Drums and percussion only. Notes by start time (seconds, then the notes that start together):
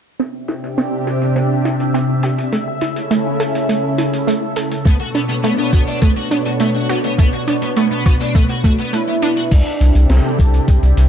0.19 closed hi-hat
0.48 closed hi-hat
0.64 closed hi-hat
0.78 closed hi-hat
1.07 closed hi-hat
1.22 closed hi-hat
1.36 closed hi-hat
1.65 closed hi-hat
1.80 closed hi-hat
1.94 closed hi-hat
2.23 closed hi-hat
2.38 closed hi-hat
2.52 closed hi-hat
2.81 closed hi-hat
2.96 closed hi-hat
3.11 closed hi-hat
3.40 closed hi-hat
3.55 closed hi-hat
3.69 closed hi-hat
3.98 closed hi-hat
4.13 closed hi-hat
4.28 closed hi-hat
4.56 closed hi-hat
4.71 closed hi-hat
4.85 kick, closed hi-hat
5.15 closed hi-hat
5.29 closed hi-hat
5.44 closed hi-hat
5.73 kick, closed hi-hat
5.87 closed hi-hat
6.01 kick, closed hi-hat
6.31 closed hi-hat
6.46 closed hi-hat
6.60 closed hi-hat
6.89 closed hi-hat
7.04 closed hi-hat
7.18 kick, closed hi-hat
7.48 closed hi-hat
7.62 closed hi-hat
7.76 closed hi-hat
8.06 kick, closed hi-hat
8.20 closed hi-hat
8.35 kick, closed hi-hat
8.49 closed hi-hat
8.64 kick, closed hi-hat
8.78 closed hi-hat
8.93 closed hi-hat
9.23 closed hi-hat
9.37 closed hi-hat
9.51 kick, closed hi-hat, crash
9.81 closed hi-hat
9.95 closed hi-hat
10.09 snare, closed hi-hat
10.39 kick, closed hi-hat
10.54 closed hi-hat
10.68 kick, closed hi-hat
10.83 closed hi-hat
10.97 closed hi-hat